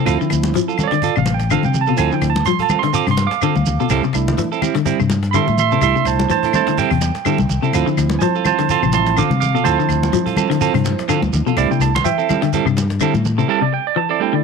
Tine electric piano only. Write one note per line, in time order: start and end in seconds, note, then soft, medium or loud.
0.06 0.75 F3 medium
0.06 0.75 C4 medium
0.06 0.76 E4 medium
0.84 0.87 C#5 medium
0.84 1.18 D5 loud
1.18 1.34 F5 medium
1.34 1.50 G5 medium
1.51 1.67 F5 medium
1.65 1.81 G5 medium
1.81 1.97 A5 medium
1.97 2.31 F3 medium
1.97 2.31 C4 medium
1.97 2.31 E4 medium
1.97 2.14 G#5 loud
2.14 2.30 G5 medium
2.30 2.46 A5 medium
2.46 2.62 C6 loud
2.62 2.78 A5 medium
2.79 2.94 C6 medium
2.95 3.10 D6 medium
3.11 3.26 C6 medium
3.27 3.86 F5 medium
3.27 4.20 D6 medium
4.14 4.47 A3 medium
4.14 4.48 D4 soft
4.14 4.48 E4 medium
5.31 5.57 E5 medium
5.31 5.34 B5 medium
5.35 5.58 C6 loud
5.59 5.81 E5 medium
5.59 5.82 C6 medium
5.83 6.51 A3 medium
5.83 6.51 D4 soft
5.83 6.51 E4 medium
5.83 6.05 E5 medium
5.83 6.06 C6 loud
6.06 6.29 C5 medium
6.06 6.30 A5 medium
6.31 6.53 C5 medium
6.31 6.54 A5 loud
6.54 6.76 A3 soft
6.54 6.76 D4 soft
6.54 6.76 E4 medium
6.54 6.77 C5 medium
6.54 6.78 A5 medium
6.79 7.71 G5 loud
7.74 8.92 F3 medium
7.74 8.93 C4 medium
7.74 8.93 E4 medium
8.19 8.44 C5 medium
8.19 8.22 G#5 medium
8.19 8.46 A5 loud
8.46 8.68 C5 medium
8.46 8.69 A5 medium
8.70 8.92 A5 medium
8.70 8.93 C6 medium
8.93 9.15 F3 soft
8.93 9.15 C4 soft
8.93 9.15 E4 medium
8.93 9.16 A5 medium
8.93 9.17 C6 medium
9.18 9.39 F5 medium
9.18 9.40 D6 medium
9.40 9.63 F5 medium
9.40 9.65 D6 medium
9.63 11.52 F3 medium
9.63 11.52 C4 medium
9.63 11.53 E4 medium
9.63 11.05 C5 loud
9.63 11.05 A5 loud
11.56 11.90 A3 medium
11.56 11.90 D4 medium
11.56 11.90 E4 medium
11.56 11.70 D5 loud
11.71 11.81 G5 medium
11.81 11.94 A5 medium
11.95 12.05 C6 medium
12.04 12.49 E5 medium
12.04 12.52 G5 medium
13.50 13.62 A5 loud
13.62 13.72 D5 medium
13.74 13.86 G5 medium
13.87 13.97 D5 medium
13.97 14.10 A5 medium
14.11 14.20 D5 loud
14.21 14.44 A3 medium
14.21 14.44 D4 medium
14.21 14.44 E4 medium
14.21 14.34 G5 loud
14.35 14.44 D5 medium